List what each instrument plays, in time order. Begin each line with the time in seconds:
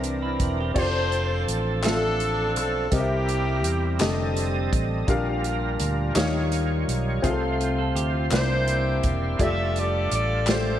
Already playing: fingered electric bass C2, grand piano C3 C4 E4 A#4 D5 E5, tonewheel organ E3 C4 D4 A#4
0.04 clean electric guitar D4, closed hi-hat
0.22 clean electric guitar E4
0.40 fingered electric bass E1, kick, closed hi-hat
0.60 clean electric guitar G4
0.74 fingered electric bass F1, tonewheel organ F3 C4 D4 A4, grand piano C4 F4 G4 D5, horn section A4 C5, alto saxophone C5, kick, crash
0.82 grand piano A4
1.12 closed hi-hat
1.47 fingered electric bass A1, closed hi-hat
1.83 grand piano C4 F4 A4 E5, horn section C4 D4 A4, alto saxophone A4, snare, clap, closed hi-hat
1.91 grand piano F5
2.20 closed hi-hat
2.56 fingered electric bass B1, horn section A4, alto saxophone A4, closed hi-hat
2.91 fingered electric bass C2, grand piano C3 C4 G4 A#4 D#5, tonewheel organ G3 C4 E4 A4, alto saxophone G4, kick, closed hi-hat
2.96 horn section A#3 E4 G4, tonewheel organ A#4
3.00 grand piano E5
3.28 closed hi-hat
3.64 fingered electric bass E2, closed hi-hat
3.99 fingered electric bass F1, grand piano D3 G4 A4 D#5, tonewheel organ G3 C4 G4 D#5, snare, clap, closed hi-hat
4.08 tonewheel organ A4
4.36 closed hi-hat
4.73 fingered electric bass A1, kick, closed hi-hat
5.07 fingered electric bass A#1, grand piano A#2 D4 G4 A#4 F5, tonewheel organ G3 D4 F4 A#4, kick, closed hi-hat
5.44 closed hi-hat
5.79 fingered electric bass D2, closed hi-hat
6.14 fingered electric bass D#2, grand piano D#3 D#4 G4 C#5 F5, tonewheel organ G3 D#4 F4 C#5, snare, clap, closed hi-hat
6.52 closed hi-hat
6.88 fingered electric bass B1, closed hi-hat
7.22 fingered electric bass C2, grand piano C3 C4 F4 G#4 F5, tonewheel organ A3 C4 F4 C5, kick, closed hi-hat
7.30 grand piano A4
7.60 clean electric guitar F4, closed hi-hat
7.78 clean electric guitar A4
7.95 fingered electric bass D2, clean electric guitar G4, closed hi-hat
8.13 clean electric guitar F4
8.31 fingered electric bass C2, grand piano C3 C4 E4 A#4 D5, tonewheel organ A#3 D4 E4 B4, horn section E4 G4 C5, alto saxophone C5, snare, clap, closed hi-hat
8.38 tonewheel organ C5
8.67 closed hi-hat
9.03 fingered electric bass E1, kick, closed hi-hat
9.39 fingered electric bass F1, tonewheel organ G3 D4 F4 G#4, grand piano A3 F4 G4 D5, horn section G4 A4 E5, kick, closed hi-hat
9.43 tonewheel organ A4, alto saxophone E5
9.76 horn section G4 A4 D5, alto saxophone D5, closed hi-hat
10.11 fingered electric bass A1, alto saxophone D5, closed hi-hat
10.47 grand piano G#3 F4 G4 D5, alto saxophone C5, snare, clap, closed hi-hat
10.52 grand piano A3, horn section G4 A4 C5